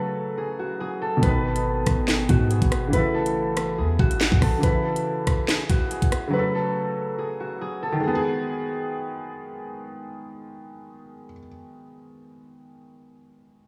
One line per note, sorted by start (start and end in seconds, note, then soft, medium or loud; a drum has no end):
0.00 1.16 C#3 medium
0.00 1.18 F#3 medium
0.00 1.19 A3 medium
0.00 0.59 F#4 medium
0.00 1.21 F#4 medium
0.00 0.44 A4 medium
0.00 1.22 A4 medium
0.00 1.22 B4 loud
0.38 0.80 G#4 medium
0.59 2.29 F#4 medium
0.80 1.08 G#4 loud
1.02 1.44 A4 medium
1.17 2.87 B2 medium
1.17 2.88 D#3 medium
1.23 1.84 G#1 loud
1.23 2.90 B3 medium
1.23 2.91 D#4 medium
1.23 2.93 B4 loud
1.23 kick loud
1.23 closed hi-hat medium
1.28 2.92 B4 medium
1.44 2.14 A4 medium
1.56 closed hi-hat medium
1.86 2.28 G#1 loud
1.86 kick medium
1.86 cross-stick loud
1.86 closed hi-hat medium
2.08 2.50 G#4 medium
2.08 snare loud
2.08 closed hi-hat medium
2.29 2.60 G#2 loud
2.29 3.99 F#4 medium
2.29 kick medium
2.29 closed hi-hat medium
2.51 3.20 G#4 medium
2.51 closed hi-hat medium
2.62 2.92 G#1 loud
2.62 kick medium
2.62 closed hi-hat medium
2.72 cross-stick loud
2.72 closed hi-hat medium
2.87 4.56 C#3 medium
2.87 4.58 E3 medium
2.93 3.80 A1 loud
2.93 4.60 A3 medium
2.93 4.61 E4 medium
2.93 4.63 B4 loud
2.93 closed hi-hat medium
2.99 4.63 A4 medium
3.14 3.84 A4 medium
3.26 closed hi-hat medium
3.57 cross-stick loud
3.57 closed hi-hat medium
3.78 3.98 E2 loud
3.78 4.20 G#4 medium
3.99 4.31 G#1 loud
3.99 5.69 F#4 medium
3.99 kick medium
4.11 closed hi-hat medium
4.21 4.48 G#4 medium
4.21 snare loud
4.21 closed hi-hat medium
4.32 4.42 E2 loud
4.32 kick medium
4.42 4.62 A1 loud
4.42 4.84 A4 medium
4.42 kick loud
4.42 cross-stick loud
4.42 open hi-hat medium
4.58 6.26 C#3 medium
4.58 6.29 E3 medium
4.63 6.32 E4 medium
4.63 6.33 B4 loud
4.63 kick loud
4.63 closed hi-hat medium
4.85 5.54 A4 medium
4.96 closed hi-hat medium
5.27 kick medium
5.27 cross-stick loud
5.27 closed hi-hat medium
5.48 5.91 G#4 medium
5.48 snare loud
5.48 closed hi-hat medium
5.70 7.40 F#4 medium
5.70 kick medium
5.70 closed hi-hat medium
5.91 6.61 G#4 medium
5.91 closed hi-hat medium
6.02 kick medium
6.02 closed hi-hat medium
6.12 cross-stick loud
6.12 closed hi-hat medium
6.28 7.97 C#3 medium
6.28 7.99 F#3 medium
6.33 8.00 A3 medium
6.33 8.02 F#4 medium
6.33 8.38 B4 loud
6.39 8.03 A4 medium
6.55 7.25 A4 medium
7.19 7.61 G#4 medium
7.40 9.84 F#4 medium
7.61 7.89 G#4 medium
7.83 8.10 A4 medium
7.92 11.24 D#3 medium
8.00 11.31 G#3 medium
8.00 10.31 G#4 medium
8.08 11.39 B3 medium
8.15 11.46 G#4 loud